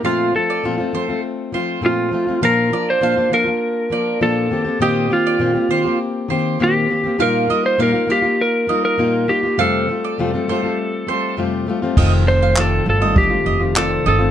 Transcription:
<<
  \new Staff \with { instrumentName = "Mandolin" } { \time 4/4 \key f \mixolydian \tempo 4 = 101 f''8 r16 d''16 r8 c''8 r8 c''8. r8. | f''8 d''8 f''8 f''16 r8. d''8. r8. | ees''8 r16 d''16 r8 c''8 r8 c''8. r8. | f''8 ees''8 f''8 f''16 r8. ees''8. r8. |
f''8 r16 d''16 r8 c''8 r8 c''8. r8. | ees''16 r8 f''16 d''16 r8 ees''8 r16 ees''16 r16 d''16 r16 ees''16 r16 | }
  \new Staff \with { instrumentName = "Electric slide guitar" } { \time 4/4 \key f \mixolydian f'8 a'4. r4 f'4 | bes'8. c''8. bes'4. a'4 | g'8 f'4. r4 g'4 | bes'8. c''16 bes'8 g'8 bes'8. bes'8. g'8 |
a'2. r4 | r8 c''8 a'8 a'8 g'4 a'8 a'8 | }
  \new Staff \with { instrumentName = "Steel-string acoustic guitar" } { \time 4/4 \key f \mixolydian <bes, f a c' f'>8 <f a c' f'>8 <bes, f a c' f'>16 <a c' f'>16 <f a c' f'>16 <a c' f'>8. <f a c' f'>8 <bes, f a c' f'>8 <f a c' f'>16 <a c' f'>16 | <bes, f bes d' f'>8 <f bes d' f'>8 <bes, f bes d' f'>16 <bes d' f'>16 <f bes d' f'>16 <bes d' f'>8. <f bes d' f'>8 <bes, f bes d' f'>8 <ees bes c' g'>16 <bes c' g'>16 | <bes, ees bes c' g'>8 <ees bes c' g'>8 <bes, ees bes c' g'>16 <bes c' g'>16 <ees bes c' g'>16 <bes c' g'>8. <ees bes c' g'>8 <bes, ees bes c' g'>8 <ees bes c' g'>16 <bes c' g'>16 | <bes, g bes ees' f'>8 <g bes ees' f'>8 <bes, g bes ees' f'>16 <bes ees' f'>16 <g bes ees' f'>16 <bes ees' f'>8. <g bes ees' f'>8 <bes, g bes ees' f'>8 <g bes ees' f'>16 <bes ees' f'>16 |
<f, c g a c' f'>8 <g a c' f'>8 <f, c g a c' f'>16 <g a c' f'>16 <g a c' f'>16 <g a c' f'>8. <g a c' f'>8 <f, c g a c' f'>8 <g a c' f'>16 <g a c' f'>16 | <f, c ees a c' f'>8 <ees a c' f'>8 <f, c ees a c' f'>8 <ees a c' f'>16 <ees a c' f'>8 <ees a c' f'>8 <ees a c' f'>16 <f, c ees a c' f'>8 <ees a c' f'>16 <ees a c' f'>16 | }
  \new Staff \with { instrumentName = "Upright bass" } { \clef bass \time 4/4 \key f \mixolydian r1 | r1 | r1 | r1 |
r1 | f,,4. g,,4 f,,4 g,,8 | }
  \new DrumStaff \with { instrumentName = "Drums" } \drummode { \time 4/4 r4 r4 r4 r4 | r4 r4 r4 r4 | r4 r4 r4 r4 | r4 r4 r4 r4 |
r4 r4 r4 r4 | <cymc bd>4 hc4 bd4 hc4 | }
>>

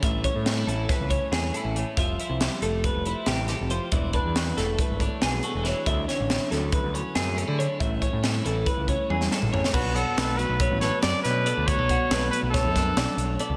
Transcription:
<<
  \new Staff \with { instrumentName = "Clean electric guitar" } { \time 9/8 \key b \dorian \tempo 4. = 93 e''8 cis''4 a'8 b'8 cis''8 gis'8 a'8 cis''8 | e''8 c''4 a'8 b'8 c''8 g'8 a'8 c''8 | d''8 b'4 a'8 b'8 cis''8 gis'8 a'8 cis''8 | e''8 cis''4 a'8 b'8 cis''8 gis'8 a'8 cis''8 |
e''8 cis''4 a'8 b'8 cis''8 gis'8 a'8 cis''8 | b'8 fis'8 b'4 cis''8 b'8 d''8 cis''8 d''8 | b'8 fis'8 b'4 cis''8 b'8 d''8 cis''8 d''8 | }
  \new Staff \with { instrumentName = "Trumpet" } { \time 9/8 \key b \dorian r1 r8 | r1 r8 | r1 r8 | r1 r8 |
r1 r8 | fis'8 a'4 b'4 cis''8 d''8 b'4 | cis''4. b'8 a'2 r8 | }
  \new Staff \with { instrumentName = "Clean electric guitar" } { \time 9/8 \key b \dorian << { r8 cis'8 cis'16 e'4~ e'16 cis'4 e'4 | r8 e'8 g'4. e'4 g'4 | r8 d'8 fis'4. d'4 fis'4~ | fis'8 cis'8 e'4. cis'4 cis'16 e'8. |
r8 cis'8 cis'16 e'4~ e'16 cis'2 | d'8 d'8 a4. a'4. a'8 | fis'16 a'16 d'8 a4. d'4. a'8 | } \\ { a,4. e4. a,4 a,8 | f4. a4. c4 f8 | e4. a4. b,4 e8 | d4. fis4. a,4 d8 |
a,4. e4. fis,8 gis,8 a,8 | b,4. fis4. fis,4 b,8 | b,4. fis4. fis,4 b,8 | } >> }
  \new Staff \with { instrumentName = "Picked electric bass" } { \clef bass \time 9/8 \key b \dorian a,,8. a,8. a,,8 r16 cis,8 r16 e,8 r16 a,,8 r16 | f,,8 r16 c,8 r16 f,,8. f,,8 r16 a,,8. f,,8 r16 | e,,8. e,8. e,,8 r16 gis,,8 r16 b,,8 r16 e,,8 r16 | d,8 r16 a,,8 r16 d,8. d,8 r16 fis,8. d8 r16 |
a,,8. a,8. a,,8 r16 cis,8 r16 e,8 r16 a,,8 r16 | b,,16 b,,8 r16 b,,8. b,,8 a,,8 r16 fis,16 r16 b,8. d,16~ | d,16 b,,8 r16 b,,8 r16 b,,8 fis,8. b,,16 r16 b,,8 r16 cis,16 | }
  \new DrumStaff \with { instrumentName = "Drums" } \drummode { \time 9/8 <hh bd>8 <hh bd>8 <hh sn>8 hh8 <hh bd sn>8 <hh bd>8 <hh sn>8 hh8 hh8 | <hh bd>8 hh8 <hh sn>8 hh8 <hh bd>8 hh8 <hh sn>8 <hh sn>8 hh8 | <hh bd>8 <hh bd>8 <hh sn>8 <hh sn>8 <hh bd>8 <hh bd>8 <hh sn>8 hh8 <hh sn>8 | <hh bd>8 <hh sn>8 <hh sn>8 <hh sn>8 <hh bd>8 hh8 <hh sn>8 hh8 hh8 |
<hh bd>8 <hh bd>8 <hh sn>8 hh8 <hh bd>8 <hh bd>8 tommh16 sn16 sn16 toml16 tomfh16 sn16 | <cymc bd>8 hh8 <hh sn>8 hh8 <hh bd>8 <hh sn>8 <hh sn>8 <hh sn>8 hh8 | <hh bd>8 <hh bd>8 <hh sn>8 hh8 <hh bd sn>8 <hh bd sn>8 <hh sn>8 hh8 hh8 | }
>>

